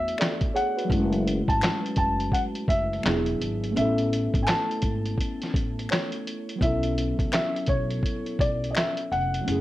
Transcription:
Already playing: E2 A3 B3 D4 E4 F#4 E5
0.08 closed hi-hat
0.18 A4 D5, finger snap, snare, clap, closed hi-hat
0.41 kick, closed hi-hat
0.54 G#4 C#5 F#5, closed hi-hat
0.76 F#4 B4, closed hi-hat
0.85 F#3 A3
0.89 F#1 C#4 E4, kick, closed hi-hat
0.95 G#3
1.13 closed hi-hat
1.28 closed hi-hat
1.48 G#1 A5, kick, closed hi-hat
1.61 finger snap, snare, clap, closed hi-hat
1.86 closed hi-hat
1.96 F#1 A5, kick, closed hi-hat
2.20 closed hi-hat
2.32 F#5, kick, closed hi-hat
2.55 closed hi-hat
2.68 F#1 E5, kick, closed hi-hat
2.93 closed hi-hat
3.02 E1 F#3 B3 D4 E4, finger snap, clap, closed hi-hat
3.07 G#4, snare
3.26 closed hi-hat
3.41 G#1, closed hi-hat
3.64 closed hi-hat
3.71 A3 B3
3.76 A1 C#4 E4 E5, closed hi-hat
3.81 A4
3.98 closed hi-hat
4.13 closed hi-hat
4.34 G#1, kick, closed hi-hat
4.43 G#5
4.47 A5, finger snap, snare, clap, closed hi-hat
4.71 closed hi-hat
4.82 G#1, kick, closed hi-hat
5.06 closed hi-hat
5.18 kick, closed hi-hat
5.42 snare, closed hi-hat
5.54 A1, kick, closed hi-hat
5.79 closed hi-hat
5.89 C#5, finger snap, snare, clap, closed hi-hat
6.12 closed hi-hat
6.27 closed hi-hat
6.49 closed hi-hat
6.56 F#3 B3
6.61 B1 C#4 E4 E5, kick, closed hi-hat
6.66 A4
6.83 closed hi-hat
6.98 closed hi-hat
7.19 C#2, kick, closed hi-hat
7.32 E5, finger snap, snare, clap, closed hi-hat
7.56 closed hi-hat
7.66 B1 C#5, kick, closed hi-hat
7.90 closed hi-hat
8.03 kick, closed hi-hat
8.26 closed hi-hat
8.39 B1 D5, kick, closed hi-hat
8.64 closed hi-hat
8.71 D#5
8.75 E5, finger snap, snare, clap, closed hi-hat
8.97 closed hi-hat
9.12 F1 F#5, closed hi-hat
9.34 closed hi-hat
9.41 F#3 A3
9.46 F#1 C#4 E4, closed hi-hat
9.51 G#4

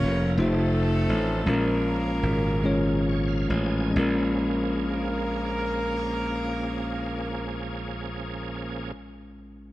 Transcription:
Already playing: F3 A#3 C#4 F4 A#4 C#5
0.03 F1
0.37 F1 F3 A3 C4 D#4 F4 A4 C5
0.42 A3 A4
1.09 A1
1.46 A#1 A#2 F3 G#3 A#3 C#4 F4 F#4 A#4
1.54 G#4
2.23 G#1
2.63 G#3 C#4 F4 C#5
3.08 C#5
3.28 F5
3.50 A1 G#5
3.90 G#3 C#4
3.95 A#1 F3 A#3 C#4 F4 G#4 A#4
3.99 A#4

